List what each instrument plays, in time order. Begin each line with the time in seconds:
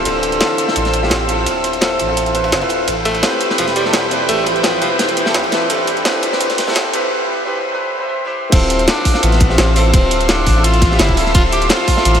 Already playing: grand piano C4 E4 F4 A4, analog synth pad C5 E6
0.05 sub bass D1, tenor saxophone D3, closed hi-hat, ride
0.23 closed hi-hat, ride
0.32 closed hi-hat
0.40 grand piano C4 E4 F4 A4, snare, closed hi-hat, ride
0.50 ride
0.58 closed hi-hat, ride
0.66 grand piano C4 E4 F4 A4, snare
0.76 sub bass A1, closed hi-hat, ride
0.85 snare, closed hi-hat
0.93 closed hi-hat, ride
1.02 grand piano C4 E4 F4 G4, snare
1.10 sub bass A1, snare, closed hi-hat, ride
1.27 grand piano C4 E4 F4 A4, closed hi-hat, ride
1.46 sub bass D1, closed hi-hat, ride
1.64 closed hi-hat, ride
1.73 closed hi-hat
1.81 grand piano C4 E4 F4 A4, snare, closed hi-hat, ride
1.99 sub bass A1, closed hi-hat, ride
2.07 grand piano C4 E4 F4 A4
2.17 closed hi-hat, ride
2.26 closed hi-hat
2.33 grand piano C4 E4 F4 B4, closed hi-hat, ride
2.43 grand piano C4 E4 F4 B4, ride
2.52 sub bass G1, snare, closed hi-hat
2.60 sub bass D1, grand piano C4 E4 F4 B4, ride
2.69 closed hi-hat, ride
2.88 sub bass A1, analog synth pad B4 G5, closed hi-hat, ride
3.05 tenor saxophone A3, closed hi-hat, ride
3.15 closed hi-hat
3.22 grand piano C4 E4 G4 B4, snare, closed hi-hat, ride
3.32 ride
3.41 closed hi-hat, ride
3.49 grand piano C4 E4 G4 B4, snare
3.58 sub bass E1, tenor saxophone F3, closed hi-hat, ride
3.67 snare, closed hi-hat
3.76 tenor saxophone G3, closed hi-hat, ride
3.84 grand piano C4 E4 G4 A4, snare
3.93 sub bass E1, snare, closed hi-hat, ride
4.09 grand piano C4 E4 G4 B4, closed hi-hat, ride
4.28 sub bass A1, tenor saxophone A3, closed hi-hat, ride
4.46 tenor saxophone F3, closed hi-hat, ride
4.54 tenor saxophone G3, closed hi-hat
4.61 tenor saxophone F3, grand piano C4 E4 G4, snare, closed hi-hat, ride
4.65 grand piano B4
4.81 sub bass E1, tenor saxophone F3, closed hi-hat, ride
4.90 grand piano C4 E4 G4 B4
4.99 tenor saxophone E3, snare, closed hi-hat, ride
5.09 closed hi-hat
5.17 closed hi-hat, ride
5.25 grand piano C4 E4 G4 A4, snare, ride
5.34 sub bass D2, snare, closed hi-hat
5.44 sub bass A1, ride
5.50 grand piano C4 E4 G4 B4, snare, closed hi-hat, ride
5.70 sub bass A1, tenor saxophone D3, closed hi-hat, ride
5.87 closed hi-hat, ride
5.97 closed hi-hat
6.04 grand piano C4 E4 G4 B4, snare, closed hi-hat, ride
6.14 ride
6.23 closed hi-hat, ride
6.31 grand piano C4 E4 G4 B4, snare
6.41 sub bass E1, closed hi-hat, ride
6.50 snare, closed hi-hat
6.58 snare, closed hi-hat, ride
6.66 grand piano C4 E4 G4 A4, snare, ride
6.71 snare, ride
6.75 sub bass E1, snare, closed hi-hat, ride
6.91 grand piano C4 E4 G4 B4, closed hi-hat, ride
7.45 grand piano C4 E4 G4 B4
7.72 grand piano C4 E4 G4 B4
7.98 grand piano C4 E4 G4 C5
8.07 grand piano C4 E4 G4 C5
8.25 grand piano C4 E4 G4 C5
8.51 sub bass D1, grand piano C4 E4 F4 A4, tenor saxophone C4, analog synth pad C6 E6, kick, closed hi-hat, ride, crash
8.70 closed hi-hat, ride
8.79 closed hi-hat
8.87 grand piano C4 E4 F4 A4, tenor saxophone D4, snare, closed hi-hat, ride
8.97 ride
9.05 kick, open hi-hat, ride
9.14 grand piano C4 E4 F4 A4, snare
9.23 sub bass A1, tenor saxophone B3, closed hi-hat, ride
9.32 snare, closed hi-hat
9.40 kick, closed hi-hat, ride
9.49 grand piano C4 E4 F4 G4, snare
9.58 sub bass A1, tenor saxophone C4, snare, closed hi-hat, ride
9.74 grand piano C4 E4 F4 A4, tenor saxophone C4, open hi-hat, ride
9.94 sub bass D1, tenor saxophone C4, kick, closed hi-hat, ride
10.11 closed hi-hat, ride
10.21 closed hi-hat
10.28 grand piano C4 E4 F4 A4, tenor saxophone D4, snare, closed hi-hat, ride
10.47 sub bass A1, kick, open hi-hat, ride
10.55 grand piano C4 E4 F4 A4
10.64 tenor saxophone F4, closed hi-hat, ride
10.74 closed hi-hat
10.81 kick, snare, closed hi-hat, ride
10.90 grand piano C4 E4 F4 G4, snare
10.99 sub bass G1, tenor saxophone E4, snare, closed hi-hat, ride
11.09 sub bass D1, kick
11.15 grand piano C4 E4 F4 A4, open hi-hat, ride
11.26 snare
11.34 sub bass D1, tenor saxophone F4, kick, closed hi-hat, ride
11.52 tenor saxophone G4, closed hi-hat, ride
11.62 closed hi-hat
11.69 grand piano C4 E4 F4 A4, tenor saxophone F4, snare, closed hi-hat, ride
11.80 ride
11.87 kick, open hi-hat, ride
11.96 grand piano C4 F4 A4 E5, snare
12.05 sub bass A1, closed hi-hat, ride
12.14 snare, closed hi-hat